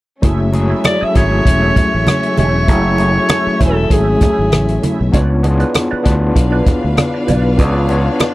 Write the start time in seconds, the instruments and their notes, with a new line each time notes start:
0.22 fingered electric bass F#1, tine electric piano F#3 A3 E4 G#4, clean electric guitar A3 E4 G#4, string section A3 C#4 E5, kick, closed hi-hat, muted conga
0.39 muted clean electric guitar stroke
0.52 tine electric piano F#3 G#3 E4 G#4, muted clean electric guitar stroke, closed hi-hat, muted conga
0.60 tine electric piano A3
0.70 clean electric guitar A3 E4 G#4
0.84 alto saxophone D5, muted clean electric guitar stroke, cross-stick, closed hi-hat, high conga
1.01 clean electric guitar A3 E4 G#4, alto saxophone E5, muted fingered electric bass stroke
1.14 fingered electric bass G#1, tine electric piano F#3 A3 E4 G#4, alto saxophone C#5, muted clean electric guitar stroke, kick, closed hi-hat, muted conga
1.31 muted clean electric guitar stroke
1.46 fingered electric bass E1, muted clean electric guitar stroke, kick, closed hi-hat
1.62 clean electric guitar A3 E4 G#4
1.76 muted clean electric guitar stroke, kick, closed hi-hat, muted conga, low conga
1.93 fingered electric bass A1, muted clean electric guitar stroke
2.07 muted clean electric guitar stroke, cross-stick, closed hi-hat, high conga
2.23 muted clean electric guitar stroke, closed hi-hat
2.37 fingered electric bass E1, clean electric guitar A3 E4 G#4, alto saxophone C#5, closed hi-hat, high conga
2.54 muted clean electric guitar stroke
2.67 fingered electric bass F#1, tine electric piano F#3 A3 E4 G#4, clean electric guitar A3 E4 G#4, kick, closed hi-hat, muted conga
2.98 tine electric piano F#3 A3 E4 G#4, closed hi-hat, muted conga
3.15 muted clean electric guitar stroke
3.29 clean electric guitar A3 E4 G#4, cross-stick, closed hi-hat, high conga
3.46 muted clean electric guitar stroke, muted fingered electric bass stroke
3.59 fingered electric bass E1, tine electric piano F#3 A3 E4 G#5, clean electric guitar A3 E4 G#4, alto saxophone A4, kick, closed hi-hat, muted conga
3.90 fingered electric bass G#1, clean electric guitar A3 E4 A4, alto saxophone G#4, kick, closed hi-hat
4.07 muted clean electric guitar stroke
4.21 clean electric guitar A3 E4 G#4, kick, cross-stick, closed hi-hat, muted conga, low conga
4.38 fingered electric bass G#1, muted clean electric guitar stroke
4.52 fingered electric bass A1, muted clean electric guitar stroke, cross-stick, closed hi-hat, high conga
4.68 closed hi-hat
4.83 clean electric guitar A3 E4 G#4, closed hi-hat, high conga
4.99 fingered electric bass B1, muted clean electric guitar stroke
5.12 fingered electric bass C#2, tine electric piano B3 D4 F4 C#5, clean electric guitar F4 B4 D5, kick, closed hi-hat, muted conga
5.30 muted clean electric guitar stroke
5.43 tine electric piano B3 D4 E4 G#4, muted clean electric guitar stroke, closed hi-hat, muted conga
5.50 tine electric piano F4
5.59 clean electric guitar F4 B4 D5, closed hi-hat
5.74 muted clean electric guitar stroke, cross-stick, closed hi-hat, high conga
5.91 clean electric guitar F4 B4 D5, muted fingered electric bass stroke
6.04 fingered electric bass D2, tine electric piano B3 D4 E4 B4, muted clean electric guitar stroke, kick, closed hi-hat
6.12 tine electric piano F4
6.22 muted clean electric guitar stroke
6.35 fingered electric bass B1, string section D4 B4 F5, muted clean electric guitar stroke, kick, closed hi-hat
6.52 clean electric guitar F4 B4 D5
6.66 muted clean electric guitar stroke, kick, closed hi-hat, muted conga, low conga
6.83 fingered electric bass D2, muted clean electric guitar stroke
6.97 muted clean electric guitar stroke, cross-stick, closed hi-hat, high conga
7.14 muted clean electric guitar stroke
7.27 fingered electric bass B1, clean electric guitar F4 B4 D5, closed hi-hat, high conga
7.44 muted clean electric guitar stroke
7.57 fingered electric bass C#2, tine electric piano B3 D4 F4 C#5, clean electric guitar F4 B4 D5, kick, closed hi-hat, muted conga
7.88 tine electric piano B3 D4 F4 C#5, closed hi-hat, muted conga
8.05 muted clean electric guitar stroke
8.19 clean electric guitar F4 B4 D5, cross-stick, closed hi-hat, high conga